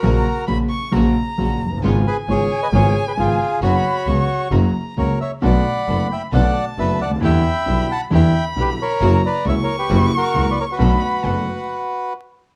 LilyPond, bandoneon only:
\new Staff \with { instrumentName = "Bandoneon" } { \time 4/4 \key b \minor \tempo 4 = 134 <fis' ais'>4 r2. | r8 <gis' b'>8 <gis' cis''>8. <b' dis''>16 <gis' cis''>8. <gis' b'>16 <eis' gis'>4 | <fis' cis''>2 r4 <ais' cis''>8 <cis'' e''>8 | <d'' fis''>4. <e'' g''>8 <d'' fis''>8. r16 <b' e''>8 <d'' fis''>8 |
<e'' g''>4. <fis'' a''>8 <e'' g''>8. r16 <g' b'>8 <ais' cis''>8~ | <ais' cis''>8 <b' d''>8 \tuplet 3/2 { <cis'' e''>8 <ais' cis''>8 <g' b'>8~ } <g' b'>8 <fis' ais'>8. <b' d''>16 <ais' cis''>16 <fis' b'>16~ | <fis' b'>2. r4 | }